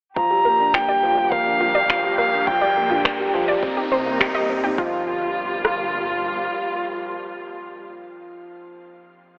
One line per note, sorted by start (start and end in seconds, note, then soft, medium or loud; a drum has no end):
0.16 2.11 G1 medium
0.16 0.30 F3 medium
0.16 2.45 F3 medium
0.16 3.60 A#3 medium
0.16 3.60 G4 medium
0.16 0.75 A#5 medium
0.16 kick medium
0.16 riser medium
0.31 0.45 G3 medium
0.31 0.36 F4 medium
0.45 0.59 A#3 medium
0.45 0.54 A#4 medium
0.60 0.74 D4 medium
0.74 0.83 A#3 medium
0.74 0.83 F4 medium
0.74 1.33 G5 medium
0.74 finger snap medium
0.74 kick medium
0.88 0.97 G3 medium
0.88 1.02 D5 loud
1.03 1.17 F3 medium
1.17 1.31 G3 medium
1.17 1.23 F4 medium
1.31 1.46 A#3 medium
1.31 1.41 A#4 medium
1.31 2.17 F5 medium
1.31 kick loud
1.46 1.60 D4 medium
1.61 1.75 A#3 medium
1.61 1.70 F4 medium
1.75 1.89 G3 medium
1.75 1.89 D5 loud
1.90 1.98 F3 medium
1.90 finger snap medium
1.90 kick medium
2.04 2.12 G3 medium
2.04 2.10 F4 medium
2.18 2.32 A#3 medium
2.18 2.27 A#4 medium
2.18 2.49 F5 medium
2.33 2.41 D4 medium
2.47 3.55 A#1 loud
2.47 3.62 D3 medium
2.47 2.61 F3 medium
2.47 2.56 F4 medium
2.47 3.34 G5 medium
2.47 kick loud
2.61 2.76 G3 medium
2.61 2.75 D5 loud
2.76 2.90 A#3 medium
2.90 3.04 D4 medium
2.90 2.96 F4 medium
3.05 3.13 A#3 medium
3.05 3.14 A#4 medium
3.05 finger snap loud
3.05 kick loud
3.20 3.28 G3 medium
3.34 3.48 F3 loud
3.34 3.43 F4 medium
3.48 3.62 G3 medium
3.48 3.62 D5 loud
3.63 4.77 C3 medium
3.63 4.77 A#3 medium
3.63 3.77 C4 medium
3.63 4.77 D#4 medium
3.63 kick loud
3.77 3.91 D#4 medium
3.77 3.83 G4 medium
3.91 4.42 C2 loud
3.91 4.05 C4 medium
3.91 4.01 C5 medium
4.06 4.20 A#3 medium
4.20 4.29 G3 medium
4.20 4.30 G4 medium
4.20 finger snap medium
4.20 kick loud
4.35 4.43 A#3 medium
4.35 4.48 D#5 loud
4.49 4.69 C2 medium
4.49 4.63 C4 medium
4.64 4.72 D#4 medium
4.64 4.69 G4 medium
4.78 6.47 G1 medium
4.78 7.85 A#2 medium
4.78 5.05 F3 medium
4.78 7.85 G3 medium
4.78 5.05 F4 medium
4.78 7.85 F4 medium
4.78 kick loud
5.65 cross-stick medium